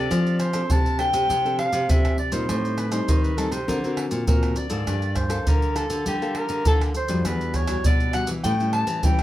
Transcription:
Already playing: C4 D4 A4 D5
0.11 F3, pandeiro, tamborim, maracas, surdo
0.26 pandeiro, maracas
0.40 C5, pandeiro, tamborim, maracas
0.53 C4 D4 A4, pandeiro, tamborim, maracas
0.70 C3 A5, pandeiro, maracas, surdo
0.86 pandeiro, maracas
0.99 C4 D4 A4 G5, pandeiro, tamborim
1.13 C3, pandeiro, maracas
1.29 C3 F3, pandeiro, maracas, surdo
1.45 C4 D4 A4, pandeiro, maracas
1.59 F5, pandeiro, tamborim
1.73 C3, pandeiro, maracas
1.89 C3 C4 D4 A4 E5, pandeiro, maracas, surdo
2.05 pandeiro, tamborim, maracas
2.18 D5, pandeiro
2.32 A#2 G3 C4 D#4 C5, pandeiro, maracas
2.49 A2, pandeiro, tamborim, maracas, surdo
2.65 pandeiro, maracas
2.78 B4, pandeiro, tamborim, maracas
2.92 G3 C4 D#4 C5, pandeiro, tamborim, maracas
3.08 A2 D#3, pandeiro, maracas, surdo
3.24 B4, pandeiro, maracas
3.37 G3 C4 D#4 A4, pandeiro, tamborim, maracas
3.52 C3 C5, pandeiro, maracas
3.68 D3 C4 F#4 A#4, pandeiro, maracas, surdo
3.84 C4 F#4 A#4, pandeiro, maracas
3.97 pandeiro, tamborim
4.11 A#2, pandeiro, maracas
4.27 A#2 D3 C4 F#4 A#4, pandeiro, maracas, surdo
4.43 pandeiro, tamborim, maracas
4.56 D5, pandeiro, maracas
4.70 G#2 A#3 F4 A4, pandeiro, maracas
4.86 G2 G3, pandeiro, tamborim, maracas, surdo
5.02 pandeiro, maracas
5.16 C5, pandeiro, tamborim, maracas, surdo
5.29 A#3 F4 A4, pandeiro, tamborim, maracas
5.46 D3 A#4, pandeiro, maracas, surdo
5.62 pandeiro, maracas
5.75 A#3 F4 A4, pandeiro, tamborim, maracas
5.90 D3, pandeiro, maracas
6.06 D3 G3 G4, pandeiro, maracas, surdo
6.22 A#3 F4 A4, pandeiro, maracas
6.35 A#4, pandeiro, tamborim
6.49 D3, pandeiro, maracas
6.65 D3 A#3 F4 A4, pandeiro, maracas, surdo
6.81 pandeiro, tamborim, maracas
6.95 C5, pandeiro, maracas
7.08 F2 G3 D4 F#4, pandeiro, maracas
7.25 E2 E3 B4, pandeiro, tamborim, maracas, surdo
7.41 pandeiro, maracas
7.54 C#5, pandeiro, tamborim, maracas, surdo
7.68 G3 D4 F#4, pandeiro, tamborim, maracas
7.84 B2 D5, pandeiro, maracas, surdo
8.00 pandeiro, maracas
8.13 G3 D4 F#4 F#5, pandeiro, tamborim, maracas
8.27 E3, pandeiro, maracas
8.44 A2 G3 C#4 E4 G5, pandeiro, maracas, surdo
8.60 G3 C#4 E4, pandeiro, maracas
8.73 A5, pandeiro, tamborim
8.87 E3, pandeiro, maracas
9.03 E3 G3 C#4 E4 G5, pandeiro, maracas, surdo
9.19 pandeiro, tamborim, maracas

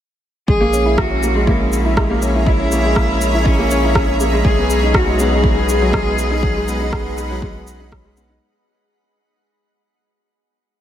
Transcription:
0.48 A#1 G#3 G#4 C#5 E5 A#5, kick
0.61 A#3
0.73 C#4, shaker
0.86 E4
0.98 F#4, kick, cross-stick
1.11 C#4
1.23 A#3, shaker
1.35 G#3
1.47 A#3 E4, kick
1.60 C#4
1.73 shaker
1.85 E4
1.97 G#3, kick, cross-stick
2.10 A#3
2.22 C#4, shaker
2.35 E4
2.46 E4, kick
2.60 C#4
2.72 A#3, shaker
2.84 G#3
2.96 A#3, kick, cross-stick
3.09 C#4
3.21 shaker
3.34 E4
3.45 G#3 C#4, kick
3.59 A#3
3.71 C#4, shaker
3.84 E4
3.95 kick, cross-stick
4.08 C#4
4.20 A#3, shaker
4.33 G#3
4.45 B1 G#3 G#4 D#5 F#5 B5, kick
4.58 B3
4.70 shaker
4.83 D#4
4.94 F#3 F#4, kick, cross-stick
5.07 G#3
5.19 B3 G#4, shaker
5.32 D#4
5.44 kick
5.57 B3
5.69 G#3, shaker
5.82 F#3
5.93 G#3, kick, cross-stick
6.06 B3
6.18 shaker
6.31 D#4
6.43 F#3, kick
6.56 G#3
6.68 B3, shaker
6.80 D#4
6.93 kick, cross-stick
7.06 B3
7.18 G#3, shaker
7.30 F#3
7.42 G#3, kick
7.55 B3
7.67 shaker
7.80 D#4
7.92 F#3, kick, cross-stick
8.04 G#3
8.17 B3, shaker
8.29 D#4

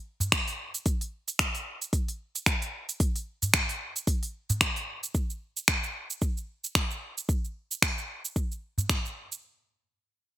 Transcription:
0.20 open hi-hat, udu, cabasa
0.32 finger snap, kick, open hi-hat, cabasa
0.48 open hi-hat, cabasa
0.74 open hi-hat, cabasa
0.86 kick, open hi-hat, cabasa
1.01 open hi-hat, cabasa
1.28 open hi-hat, cabasa
1.39 finger snap, kick, open hi-hat, cabasa
1.55 open hi-hat, cabasa
1.82 open hi-hat, cabasa
1.93 kick, open hi-hat, cabasa
2.08 open hi-hat, cabasa
2.35 open hi-hat, cabasa
2.46 finger snap, kick, open hi-hat, cabasa
2.62 open hi-hat, cabasa
2.89 open hi-hat, cabasa
3.00 kick, open hi-hat, cabasa
3.16 open hi-hat, cabasa
3.42 open hi-hat, udu, cabasa
3.54 finger snap, kick, open hi-hat, cabasa
3.69 open hi-hat, cabasa
3.96 open hi-hat, cabasa
4.07 kick, open hi-hat, cabasa
4.23 open hi-hat, cabasa
4.50 open hi-hat, udu, cabasa
4.61 finger snap, kick, open hi-hat, cabasa
4.76 open hi-hat, cabasa
5.03 open hi-hat, cabasa
5.15 kick, cabasa
5.30 cabasa
5.57 cabasa
5.68 finger snap, kick, cabasa
5.84 cabasa
6.10 cabasa
6.22 kick, cabasa
6.37 cabasa
6.64 cabasa
6.75 finger snap, kick, cabasa
6.91 cabasa
7.18 cabasa
7.29 kick, cabasa
7.45 cabasa
7.71 cabasa
7.82 finger snap, kick, cabasa
7.98 cabasa
8.25 cabasa
8.36 kick, cabasa
8.52 cabasa
8.78 udu, cabasa
8.90 finger snap, kick, cabasa
9.05 cabasa
9.32 cabasa

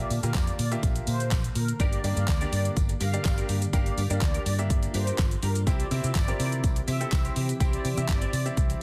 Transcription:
Already playing: D3 A#3 F4 G4 E5 A5
0.10 A#2, open hi-hat, tambourine, shaker
0.23 A#2 A#3 F4 G4 A#4 F5, closed hi-hat, shaker
0.34 F2 D5, kick, snare, clap, closed hi-hat, tambourine, shaker
0.47 closed hi-hat, shaker
0.59 A#2 D5, open hi-hat, tambourine, shaker
0.71 A#3 F4 G4 E5, closed hi-hat, shaker
0.83 A#1, kick, closed hi-hat, tambourine, shaker
0.96 closed hi-hat, shaker
1.07 A#2 C5, open hi-hat, tambourine, shaker
1.20 closed hi-hat, shaker
1.31 A#1, kick, snare, clap, closed hi-hat, tambourine, shaker
1.44 closed hi-hat, shaker
1.55 A#2 A#4, open hi-hat, tambourine, shaker
1.68 closed hi-hat, shaker
1.79 G1 A#3 D4 G4 A#4 D5, kick, closed hi-hat, tambourine, shaker
1.93 D5, closed hi-hat, shaker
2.04 G2 A#3 D4 G4 A#4 D5, open hi-hat, tambourine, shaker
2.17 G2 D4 G4 A#4 F5, closed hi-hat, shaker
2.28 D2 D5, muted clean electric guitar stroke, kick, snare, clap, closed hi-hat, tambourine, shaker
2.41 A#3 D4 G4 A#4 D5, closed hi-hat, shaker
2.52 G2 D4 G4 A#4 D5, open hi-hat, tambourine, shaker
2.65 muted clean electric guitar stroke, closed hi-hat, shaker
2.76 G1, muted clean electric guitar stroke, kick, closed hi-hat, tambourine, shaker
2.89 muted clean electric guitar stroke, closed hi-hat, shaker
3.00 G2 D4 G4 A#4 F5, open hi-hat, tambourine, shaker
3.13 A#3 D4 G4 A#4 D5, closed hi-hat, shaker
3.25 G1 A#3 D4 G4 D5, muted clean electric guitar stroke, kick, snare, clap, closed hi-hat, tambourine, shaker
3.37 D4 G4 A#4, closed hi-hat, shaker
3.49 G2 D4 G4 A#4, open hi-hat, tambourine, shaker
3.62 muted clean electric guitar stroke, closed hi-hat, shaker
3.73 G1 A#3 D4 F4 G4 A#4 F5, kick, closed hi-hat, tambourine, shaker
3.86 D5, closed hi-hat, shaker
3.97 G2 D4 G4 A#4, open hi-hat, tambourine, shaker
4.10 G2 A#3 D4 G4 A#4 D5 F5, closed hi-hat, shaker
4.21 D2 D5, muted clean electric guitar stroke, kick, snare, clap, closed hi-hat, tambourine, shaker
4.34 D4 G4 A#4, closed hi-hat, shaker
4.46 G2 D4 G4 A#4 D5, open hi-hat, tambourine, shaker
4.59 A#3 D4 G4 E5, muted clean electric guitar stroke, closed hi-hat, shaker
4.70 G1, muted clean electric guitar stroke, kick, closed hi-hat, shaker
4.83 muted clean electric guitar stroke, closed hi-hat, shaker
4.94 G2 D4 G4 A#4 C5, open hi-hat, tambourine, shaker
5.07 D4 G4 A#4, closed hi-hat, shaker
5.18 G1, kick, snare, clap, closed hi-hat, tambourine, shaker
5.31 muted clean electric guitar stroke, closed hi-hat, shaker
5.42 G2 D4 G4 A#4, open hi-hat, shaker
5.55 muted clean electric guitar stroke, closed hi-hat, shaker
5.67 C2 E3 C4 E4 G4 C5 E5, kick, closed hi-hat, tambourine, shaker
5.80 D5, closed hi-hat, shaker
5.91 C3 C4 E4 G4 C5 E5, open hi-hat, tambourine, shaker
6.04 C3 E4 G4 C5 E5, closed hi-hat, shaker
6.15 G1 D5, kick, snare, clap, closed hi-hat, tambourine, shaker
6.28 C4 E4 G4 A#4 C5, closed hi-hat, shaker
6.39 C3 E4 G4 C5 D5, open hi-hat, tambourine, shaker
6.52 muted clean electric guitar stroke, closed hi-hat, shaker
6.63 C2, muted clean electric guitar stroke, kick, closed hi-hat, tambourine, shaker
6.76 muted clean electric guitar stroke, closed hi-hat, shaker
6.88 C3 E4 G4 C5 E5, open hi-hat, tambourine, shaker
7.00 C4 E4 G4 A4 C5, closed hi-hat, shaker
7.12 C2 C4 E4 G4 E5, muted clean electric guitar stroke, kick, snare, clap, closed hi-hat, tambourine, shaker
7.25 E4 G4 C5, closed hi-hat, shaker
7.36 C3 E4 G4 C5, open hi-hat, shaker
7.49 muted clean electric guitar stroke, closed hi-hat, shaker
7.60 C2 C4 E4 G4 C5 E5, kick, closed hi-hat, tambourine, shaker
7.73 D5, closed hi-hat, shaker
7.84 C3 E4 G4 C5, open hi-hat, tambourine, shaker
7.97 C3 C4 E4 G4 C5 E5, closed hi-hat, shaker
8.09 G1 D5, muted clean electric guitar stroke, kick, snare, clap, closed hi-hat, tambourine, shaker
8.21 E4 G4 C5, closed hi-hat, shaker
8.33 C3 E4 G4 C5 D5, open hi-hat, tambourine, shaker
8.46 C4 E4 G4 E5, muted clean electric guitar stroke, closed hi-hat, shaker
8.57 C2, muted clean electric guitar stroke, kick, closed hi-hat, tambourine, shaker
8.70 muted clean electric guitar stroke, closed hi-hat, shaker

